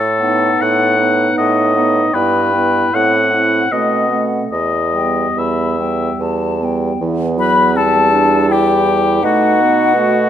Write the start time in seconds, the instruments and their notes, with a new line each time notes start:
Already playing: bassoon A2, oboe A4
0.20 french horn B3, clarinet D#4, flute F#5
0.61 bassoon A2, oboe F#5
0.98 french horn B3, clarinet D#4, flute F#5
1.38 bassoon A2, oboe D#5
1.75 french horn B3, clarinet D#4, flute F#5
2.12 bassoon G2, french horn B3, clarinet E4, oboe B4, flute G5
2.51 french horn B3, clarinet E4, flute G5
2.93 bassoon A2, french horn C4, clarinet E4, flute F#5, oboe F#5
3.33 french horn C4, clarinet E4, flute F#5
3.71 bassoon B2, french horn A3, clarinet C4, oboe D#5, flute F#5
4.10 french horn A3, clarinet C4, flute F#5
4.52 bassoon E2, oboe D#5
4.94 french horn G3, clarinet B3, flute G5
5.37 bassoon E2, oboe E5, flute B5
5.79 french horn G3, clarinet B3, flute G5
6.20 bassoon E2, flute A5
6.61 french horn G3, clarinet B3, flute G5
7.00 bassoon E2, french horn E3, clarinet B3
7.37 french horn F#3, flute B5
7.41 oboe B4
7.75 french horn G3, clarinet C4, oboe A4, flute A5
8.12 clarinet D4
8.49 clarinet E4, oboe G4, flute G5
9.22 bassoon B2, french horn A3, clarinet D#4, oboe F#4, flute F#5
9.60 french horn B3
9.95 french horn A3, clarinet F#4